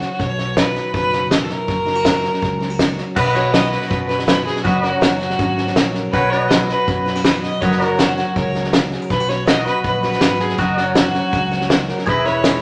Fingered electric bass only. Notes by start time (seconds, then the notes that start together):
0.20 B1
0.94 F#1
1.68 F#1
2.42 C#2
3.16 B1
3.91 F#2
4.65 F#1
5.01 F#1
5.39 G#1
5.76 A#1
6.13 B1
6.88 F#2
7.62 F#1
8.36 C#2
9.10 B1
9.84 A#1
10.21 G#1
10.59 F#1
11.33 C#2
12.07 E1